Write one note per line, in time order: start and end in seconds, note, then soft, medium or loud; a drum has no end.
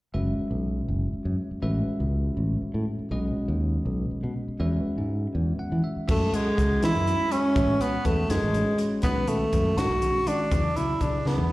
0.14 0.33 F#1 medium
0.14 1.60 G#3 medium
0.14 1.60 C#4 soft
0.14 1.60 F#4 soft
0.14 1.60 B4 soft
0.14 1.60 E5 medium
0.39 muted fingered electric bass stroke soft
0.51 0.80 B1 medium
0.88 1.08 F#1 medium
1.13 muted fingered electric bass stroke soft
1.25 1.35 F#2 medium
1.51 muted fingered electric bass stroke soft
1.62 1.82 A1 medium
1.62 3.08 G#3 medium
1.62 3.08 C#4 medium
1.62 3.08 F#4 soft
1.62 3.08 B4 medium
1.62 3.08 E5 medium
1.88 muted fingered electric bass stroke soft
2.00 2.29 C#2 medium
2.37 2.56 A1 medium
2.62 muted fingered electric bass stroke soft
2.74 2.84 A2 medium
2.99 muted fingered electric bass stroke soft
3.11 3.30 B1 medium
3.11 4.57 G#3 medium
3.11 4.57 C#4 medium
3.11 4.57 F#4 medium
3.11 4.57 B4 medium
3.11 4.57 D#5 medium
3.36 muted fingered electric bass stroke soft
3.48 3.77 D#2 medium
3.85 4.05 B1 medium
4.11 muted fingered electric bass stroke soft
4.23 4.33 B2 medium
4.48 muted fingered electric bass stroke soft
4.60 4.79 E2 medium
4.60 6.05 G#3 medium
4.60 6.05 C#4 medium
4.60 6.05 F#4 medium
4.60 6.05 B4 medium
4.60 5.83 E5 medium
4.85 muted fingered electric bass stroke soft
4.98 5.26 G#2 medium
5.35 5.53 E2 medium
5.59 5.82 F#5 medium
5.59 muted fingered electric bass stroke soft
5.72 5.81 E3 medium
5.84 6.07 E5 medium
5.96 muted fingered electric bass stroke soft
6.08 6.27 F#2 medium
6.08 6.28 G#3 medium
6.08 6.36 A3 medium
6.08 6.28 C#4 medium
6.08 6.28 F#4 medium
6.08 6.28 B4 medium
6.08 6.27 E5 medium
6.08 kick medium
6.08 crash medium
6.33 6.48 G#3 medium
6.33 6.83 G#3 medium
6.33 6.48 C#4 soft
6.33 6.48 F#4 soft
6.33 6.48 B4 soft
6.33 6.48 F#5 medium
6.33 closed hi-hat soft
6.57 6.77 C#2 medium
6.57 6.88 G#3 soft
6.57 6.88 C#4 soft
6.57 6.88 F#4 soft
6.57 6.88 B4 soft
6.57 6.88 F#5 medium
6.57 kick medium
6.57 closed hi-hat soft
6.83 6.92 E3 medium
6.83 7.33 E4 medium
6.83 snare medium
6.83 closed hi-hat medium
6.95 7.14 F#2 medium
7.07 7.22 G#3 medium
7.07 7.22 C#4 soft
7.07 7.22 F#4 soft
7.07 7.22 B4 soft
7.07 7.22 E5 medium
7.07 closed hi-hat soft
7.31 7.55 G#3 medium
7.31 7.54 C#4 medium
7.31 7.83 C#4 medium
7.31 7.54 F#4 medium
7.31 7.54 B4 soft
7.31 7.54 E5 medium
7.31 closed hi-hat soft
7.55 7.75 A1 medium
7.55 7.76 G#3 medium
7.55 7.75 C#4 medium
7.55 7.76 F#4 medium
7.55 7.75 B4 medium
7.55 7.76 E5 medium
7.55 kick medium
7.55 closed hi-hat medium
7.80 7.96 G#3 medium
7.80 8.07 B3 medium
7.80 7.96 C#4 medium
7.80 7.96 F#4 soft
7.80 7.96 B4 soft
7.80 7.96 C#5 medium
7.80 closed hi-hat soft
8.05 8.24 E2 medium
8.05 8.36 G#3 medium
8.05 8.32 A3 medium
8.05 8.36 C#4 soft
8.05 8.36 F#4 soft
8.05 8.36 B4 soft
8.05 8.36 C#5 medium
8.05 kick medium
8.05 closed hi-hat soft
8.30 8.40 F#2 medium
8.30 8.86 G#3 medium
8.30 snare medium
8.30 closed hi-hat medium
8.42 8.61 A1 medium
8.54 8.69 G#3 medium
8.54 8.69 C#4 soft
8.54 8.69 F#4 soft
8.54 8.70 B4 soft
8.54 8.69 C#5 medium
8.54 closed hi-hat soft
8.78 9.02 G#3 medium
8.78 9.02 C#4 medium
8.78 9.02 F#4 soft
8.78 9.02 B4 medium
8.78 9.03 C#5 medium
8.78 closed hi-hat soft
9.03 9.23 B1 medium
9.03 9.23 D#3 medium
9.03 9.24 G#3 medium
9.03 9.30 B3 medium
9.03 9.23 C#4 medium
9.03 9.23 F#4 medium
9.03 9.23 B4 medium
9.03 kick medium
9.03 closed hi-hat medium
9.28 9.44 D#3 medium
9.28 9.44 G#3 soft
9.28 9.79 A3 medium
9.28 9.43 C#4 soft
9.28 9.43 F#4 medium
9.28 9.44 A4 medium
9.28 closed hi-hat medium
9.53 9.72 F#2 medium
9.53 9.84 D#3 medium
9.53 9.84 G#3 soft
9.53 9.84 C#4 soft
9.53 9.84 F#4 soft
9.53 9.84 B4 medium
9.53 kick medium
9.53 closed hi-hat medium
9.77 9.87 G#2 medium
9.77 10.29 F#4 medium
9.77 snare medium
9.77 closed hi-hat medium
9.89 10.09 B1 medium
10.02 10.18 D#3 medium
10.02 10.18 G#3 soft
10.02 10.18 C#4 soft
10.02 10.18 F#4 soft
10.02 10.18 G#4 medium
10.02 closed hi-hat soft
10.26 10.51 D#3 medium
10.26 10.51 G#3 medium
10.26 10.52 C#4 medium
10.26 10.78 D4 medium
10.26 10.52 F#4 soft
10.26 10.52 B4 medium
10.26 closed hi-hat medium
10.52 10.71 E2 medium
10.52 10.72 C#3 medium
10.52 10.72 F#3 medium
10.52 10.72 B3 medium
10.52 10.72 E4 medium
10.52 10.72 G#4 medium
10.52 kick medium
10.52 closed hi-hat medium
10.76 10.92 C#3 medium
10.76 10.92 F#3 medium
10.76 10.92 B3 medium
10.76 11.03 E4 medium
10.76 10.92 E4 medium
10.76 10.92 F#4 medium
10.76 closed hi-hat soft
11.01 11.20 B1 medium
11.01 11.32 C#3 medium
11.01 11.32 F#3 soft
11.01 11.32 B3 soft
11.01 11.28 D4 medium
11.01 11.32 E4 soft
11.01 11.32 G#4 medium
11.01 kick medium
11.01 closed hi-hat soft
11.25 11.35 C#3 medium
11.25 11.52 B3 medium
11.25 snare soft
11.38 11.52 E2 medium
11.38 high tom soft